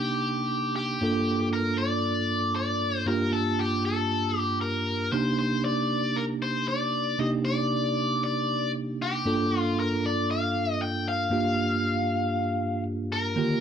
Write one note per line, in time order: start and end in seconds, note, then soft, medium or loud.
0.00 0.96 C3 medium
0.00 0.97 A#3 medium
0.00 0.97 D4 medium
0.00 0.97 D#4 medium
0.00 0.74 G4 medium
0.00 0.98 G4 medium
0.76 1.49 G4 medium
1.01 3.03 G2 medium
1.01 3.03 A#3 medium
1.01 3.03 D4 medium
1.01 3.04 F4 medium
1.01 3.04 A4 medium
1.53 1.78 A#4 loud
1.78 2.54 D5 medium
2.56 3.07 D5 loud
3.06 5.08 G2 medium
3.06 5.09 A#3 soft
3.06 5.09 D4 soft
3.06 5.09 F4 medium
3.06 5.09 G4 medium
3.06 3.32 A#4 loud
3.33 3.59 A4 medium
3.59 3.83 G4 medium
3.85 4.38 A4 medium
4.38 4.58 G4 medium
4.61 5.12 A#4 medium
5.12 7.14 C3 medium
5.12 7.15 A#3 medium
5.12 7.15 D4 medium
5.12 7.15 D#4 soft
5.12 7.16 G4 medium
5.12 5.37 C5 loud
5.39 5.63 C5 medium
5.65 6.18 D5 loud
6.16 6.23 A#4 medium
6.42 6.66 C5 medium
6.68 7.20 D5 loud
7.18 9.21 C3 medium
7.18 9.21 A#3 soft
7.18 9.21 D4 soft
7.18 9.22 D#4 medium
7.18 9.22 G4 medium
7.18 7.27 D#5 loud
7.45 8.23 D5 loud
8.24 8.71 D5 medium
9.02 9.59 G4 medium
9.25 11.27 G2 medium
9.25 11.27 A#3 medium
9.25 11.28 D4 medium
9.25 11.28 F4 medium
9.25 11.28 A4 medium
9.59 9.79 F4 medium
9.80 10.05 A#4 medium
10.06 10.28 D5 medium
10.31 10.82 F5 medium
10.82 11.07 G5 medium
11.08 12.83 F5 medium
11.30 13.33 G2 medium
11.30 13.33 A#3 medium
11.30 13.33 D4 soft
11.30 13.33 F4 soft
11.30 13.34 G4 medium
13.12 13.60 A#4 medium
13.36 13.60 D3 soft
13.36 13.60 D#3 medium
13.36 13.60 A#3 medium
13.36 13.60 F4 medium
13.36 13.60 G4 medium